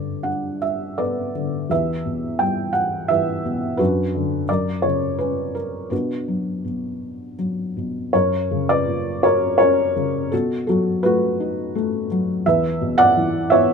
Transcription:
felt piano
Already playing: G2 D3 A4 B4 D5
0.23 D4 F#5
0.62 E5
0.98 B3 A4 B4 D5
1.35 D3
1.70 E2 G4 B4 E5
2.05 B2
2.39 G3 G5
2.73 F#5
3.08 E3 G4 B4 E5
3.45 B2
3.77 F#2 D4 F#4 B4
4.15 D3
4.49 F#2 A#4 D5
4.82 C#3 C#5
5.18 C#4 B4
5.55 A#4
5.90 B2 D4 F#4 B4
6.28 F#3
6.65 B2
7.39 F#3
7.77 B2
8.13 F#2 A#4 C#5
8.51 C#3
8.69 B4 D5
8.86 A#2
9.23 F#4 A#4 C#5
9.58 C#4 A#4 C#5
9.96 C#3
10.32 B2 F#4 A4
10.67 F#3 F#4 A4
11.03 A3 F#4 B4
11.40 D#4
11.75 A3
12.11 F#3
12.46 E2 B4 E5
12.81 B2
12.98 D5 F#5
13.17 E3
13.50 B3 C#5 E5

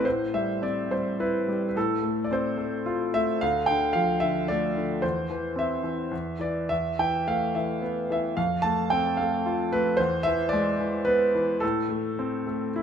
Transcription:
grand piano
0.05 A2 C5
0.34 G3 E5
0.62 C4 D5
0.91 G3 C5
1.20 E4 B4
1.48 G3
1.69 B4
1.76 A2 A4
2.03 A3
2.24 D5
2.31 C4 C5
2.58 A3
2.86 F4
3.14 A3 E5
3.41 D2 F5
3.66 G5
3.70 D3
3.93 F3 F5
4.20 D3 E5
4.48 A3 D5
4.77 D3
5.02 E2 C5
5.30 E3
5.56 C4 E5
5.83 E3
6.11 E2
6.39 E3 D5
6.69 E2 E5
6.99 E3 G5
7.27 A3 F5
7.55 E3 E5
7.82 B3
8.10 E3 E5
8.37 F2 F5
8.62 A3 A5
8.90 C4 G5
9.17 A3 F5
9.46 F4
9.72 A3 B4
9.97 E2 C5
10.23 E3 E5
10.49 G#3 D5
10.80 E3
11.05 B3 B4
11.35 E3
11.60 A2 A4
11.89 A3
12.19 C4
12.47 A3
12.76 E4

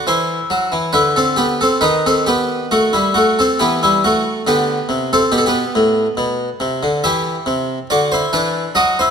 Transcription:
harpsichord
0.07 E3 E4 C5
0.50 F#3
0.72 E3
0.93 D3 E4 B4
1.16 C4 A4
1.36 B3 G4
1.61 C4 A4
1.81 D#3 D#4 B4
2.06 C4 A4
2.27 B3 G4
2.71 A3 F#4
2.93 G3 E4
3.14 A3 F#4
3.39 C4 A4
3.59 E3 B3 G4
3.83 G3 E4
4.04 A3 F#4
4.47 D3 B3 G4
4.89 C3
5.13 C4 A4
5.32 B2 G4
5.38 A4
5.46 B3 G4
5.75 A2
6.17 B2
6.60 C3
6.83 D3
7.04 E3 G4 E5
7.46 C3
7.90 D3 F#4 D5
8.12 E4 C5
8.33 E3 D4 B4
8.75 F#3 F#4 D#5
8.99 E4 C5

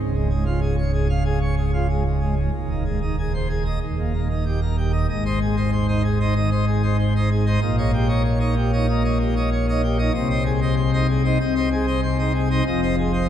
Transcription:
pipe organ
0.00 C#1 C#2
0.15 G#2
0.30 G#3
0.46 F4
0.61 G#4
0.78 C#5
0.94 G#4
1.10 F5
1.25 G#4
1.41 C#5
1.57 G#4
1.73 F4
1.89 G#3
2.05 G#2
2.20 G#3
2.37 G#2
2.54 D#1 D#2
2.70 D#3
2.85 G#3
3.02 D#4
3.19 G#4
3.34 C5
3.49 G#4
3.66 D#5
3.82 D#1 D#2
3.99 A#2
4.14 A#3
4.30 D#4
4.45 G4
4.62 A#4
4.77 G4
4.93 D#5
5.09 G#1 G#2 D#5
5.25 C5 D#5
5.41 G#4
5.57 C5 D#5
5.72 C5
5.88 D#4 C5 D#5
6.04 G#4
6.20 D#4 C5 D#5
6.36 D#3 D#5
6.51 C5 D#5
6.67 G#4
6.83 C5 D#5
6.99 C5
7.16 D#4 C5 D#5
7.31 G#4
7.46 D#4 C5 D#5
7.61 A#1 A#2 D#5
7.78 C#5 D#5
7.93 G4
8.09 C#5 D#5
8.25 C#5
8.40 D#4 C#5 D#5
8.57 G4
8.73 D#4 C#5 D#5
8.89 A#3 D#5
9.05 C#5 D#5
9.20 G4
9.36 C#5 D#5
9.52 C#5
9.68 D#4 C#5 D#5
9.83 G4
9.99 D#4 C#5 D#5
10.14 C2 C3 D#5
10.30 C5 D#5
10.45 G#4
10.62 C5 D#5
10.76 C5
10.94 D#4 C5 D#5
11.08 G#4
11.25 D#4 C5 D#5
11.40 C2 C3 D#5
11.56 C5 D#5
11.72 G#4
11.87 C5 D#5
12.03 C5
12.19 D#4 C5 D#5
12.35 G#4
12.51 D#4 C5 D#5
12.67 F1 F2 D#5
12.83 C5 D#5
12.99 G#4
13.13 C5 D#5

